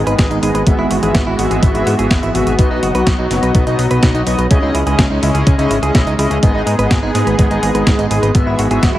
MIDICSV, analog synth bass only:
0, 0, Header, 1, 2, 480
1, 0, Start_track
1, 0, Key_signature, 4, "minor"
1, 0, Tempo, 480000
1, 667, Time_signature, 4, 2, 24, 8
1, 8988, End_track
2, 0, Start_track
2, 0, Title_t, "Analog synth bass"
2, 0, Program_c, 0, 38
2, 66, Note_on_c, 0, 32, 82
2, 151, Note_off_c, 0, 32, 0
2, 186, Note_on_c, 0, 32, 102
2, 271, Note_off_c, 0, 32, 0
2, 306, Note_on_c, 0, 32, 76
2, 391, Note_off_c, 0, 32, 0
2, 426, Note_on_c, 0, 32, 94
2, 511, Note_off_c, 0, 32, 0
2, 545, Note_on_c, 0, 32, 84
2, 630, Note_off_c, 0, 32, 0
2, 665, Note_on_c, 0, 32, 99
2, 750, Note_off_c, 0, 32, 0
2, 786, Note_on_c, 0, 32, 78
2, 871, Note_off_c, 0, 32, 0
2, 906, Note_on_c, 0, 32, 92
2, 991, Note_off_c, 0, 32, 0
2, 1026, Note_on_c, 0, 32, 81
2, 1111, Note_off_c, 0, 32, 0
2, 1146, Note_on_c, 0, 32, 105
2, 1231, Note_off_c, 0, 32, 0
2, 1266, Note_on_c, 0, 32, 74
2, 1351, Note_off_c, 0, 32, 0
2, 1386, Note_on_c, 0, 32, 96
2, 1471, Note_off_c, 0, 32, 0
2, 1506, Note_on_c, 0, 32, 88
2, 1591, Note_off_c, 0, 32, 0
2, 1627, Note_on_c, 0, 32, 104
2, 1712, Note_off_c, 0, 32, 0
2, 1745, Note_on_c, 0, 32, 77
2, 1830, Note_off_c, 0, 32, 0
2, 1865, Note_on_c, 0, 44, 96
2, 1950, Note_off_c, 0, 44, 0
2, 1987, Note_on_c, 0, 32, 84
2, 2071, Note_off_c, 0, 32, 0
2, 2106, Note_on_c, 0, 30, 101
2, 2191, Note_off_c, 0, 30, 0
2, 2226, Note_on_c, 0, 32, 75
2, 2311, Note_off_c, 0, 32, 0
2, 2346, Note_on_c, 0, 32, 93
2, 2431, Note_off_c, 0, 32, 0
2, 2468, Note_on_c, 0, 32, 84
2, 2552, Note_off_c, 0, 32, 0
2, 2586, Note_on_c, 0, 35, 103
2, 2671, Note_off_c, 0, 35, 0
2, 2706, Note_on_c, 0, 35, 76
2, 2791, Note_off_c, 0, 35, 0
2, 2826, Note_on_c, 0, 30, 95
2, 2911, Note_off_c, 0, 30, 0
2, 2944, Note_on_c, 0, 35, 82
2, 3030, Note_off_c, 0, 35, 0
2, 3066, Note_on_c, 0, 35, 100
2, 3151, Note_off_c, 0, 35, 0
2, 3187, Note_on_c, 0, 35, 73
2, 3271, Note_off_c, 0, 35, 0
2, 3305, Note_on_c, 0, 30, 95
2, 3390, Note_off_c, 0, 30, 0
2, 3425, Note_on_c, 0, 35, 84
2, 3511, Note_off_c, 0, 35, 0
2, 3546, Note_on_c, 0, 35, 102
2, 3631, Note_off_c, 0, 35, 0
2, 3665, Note_on_c, 0, 35, 80
2, 3751, Note_off_c, 0, 35, 0
2, 3784, Note_on_c, 0, 35, 95
2, 3870, Note_off_c, 0, 35, 0
2, 3908, Note_on_c, 0, 35, 81
2, 3992, Note_off_c, 0, 35, 0
2, 4026, Note_on_c, 0, 35, 103
2, 4111, Note_off_c, 0, 35, 0
2, 4144, Note_on_c, 0, 35, 76
2, 4230, Note_off_c, 0, 35, 0
2, 4265, Note_on_c, 0, 35, 93
2, 4351, Note_off_c, 0, 35, 0
2, 4384, Note_on_c, 0, 35, 81
2, 4470, Note_off_c, 0, 35, 0
2, 4507, Note_on_c, 0, 37, 102
2, 4591, Note_off_c, 0, 37, 0
2, 4624, Note_on_c, 0, 37, 76
2, 4710, Note_off_c, 0, 37, 0
2, 4743, Note_on_c, 0, 37, 94
2, 4829, Note_off_c, 0, 37, 0
2, 4864, Note_on_c, 0, 37, 80
2, 4950, Note_off_c, 0, 37, 0
2, 4986, Note_on_c, 0, 37, 100
2, 5071, Note_off_c, 0, 37, 0
2, 5103, Note_on_c, 0, 37, 71
2, 5190, Note_off_c, 0, 37, 0
2, 5222, Note_on_c, 0, 37, 97
2, 5309, Note_off_c, 0, 37, 0
2, 5343, Note_on_c, 0, 37, 86
2, 5430, Note_off_c, 0, 37, 0
2, 5466, Note_on_c, 0, 37, 99
2, 5551, Note_off_c, 0, 37, 0
2, 5583, Note_on_c, 0, 37, 81
2, 5669, Note_off_c, 0, 37, 0
2, 5703, Note_on_c, 0, 32, 99
2, 5790, Note_off_c, 0, 32, 0
2, 5823, Note_on_c, 0, 37, 80
2, 5909, Note_off_c, 0, 37, 0
2, 5947, Note_on_c, 0, 35, 102
2, 6032, Note_off_c, 0, 35, 0
2, 6064, Note_on_c, 0, 37, 77
2, 6150, Note_off_c, 0, 37, 0
2, 6184, Note_on_c, 0, 37, 93
2, 6270, Note_off_c, 0, 37, 0
2, 6304, Note_on_c, 0, 37, 84
2, 6390, Note_off_c, 0, 37, 0
2, 6427, Note_on_c, 0, 32, 104
2, 6512, Note_off_c, 0, 32, 0
2, 6544, Note_on_c, 0, 32, 77
2, 6630, Note_off_c, 0, 32, 0
2, 6665, Note_on_c, 0, 44, 92
2, 6750, Note_off_c, 0, 44, 0
2, 6783, Note_on_c, 0, 32, 80
2, 6870, Note_off_c, 0, 32, 0
2, 6907, Note_on_c, 0, 32, 101
2, 6992, Note_off_c, 0, 32, 0
2, 7026, Note_on_c, 0, 32, 76
2, 7111, Note_off_c, 0, 32, 0
2, 7144, Note_on_c, 0, 44, 97
2, 7230, Note_off_c, 0, 44, 0
2, 7263, Note_on_c, 0, 32, 84
2, 7350, Note_off_c, 0, 32, 0
2, 7388, Note_on_c, 0, 32, 106
2, 7472, Note_off_c, 0, 32, 0
2, 7505, Note_on_c, 0, 32, 82
2, 7590, Note_off_c, 0, 32, 0
2, 7626, Note_on_c, 0, 32, 96
2, 7711, Note_off_c, 0, 32, 0
2, 7745, Note_on_c, 0, 32, 84
2, 7830, Note_off_c, 0, 32, 0
2, 7867, Note_on_c, 0, 32, 99
2, 7951, Note_off_c, 0, 32, 0
2, 7985, Note_on_c, 0, 32, 78
2, 8071, Note_off_c, 0, 32, 0
2, 8106, Note_on_c, 0, 32, 95
2, 8191, Note_off_c, 0, 32, 0
2, 8225, Note_on_c, 0, 32, 84
2, 8310, Note_off_c, 0, 32, 0
2, 8347, Note_on_c, 0, 32, 103
2, 8431, Note_off_c, 0, 32, 0
2, 8467, Note_on_c, 0, 32, 81
2, 8552, Note_off_c, 0, 32, 0
2, 8587, Note_on_c, 0, 32, 94
2, 8672, Note_off_c, 0, 32, 0
2, 8707, Note_on_c, 0, 32, 81
2, 8792, Note_off_c, 0, 32, 0
2, 8827, Note_on_c, 0, 32, 100
2, 8912, Note_off_c, 0, 32, 0
2, 8948, Note_on_c, 0, 32, 72
2, 8988, Note_off_c, 0, 32, 0
2, 8988, End_track
0, 0, End_of_file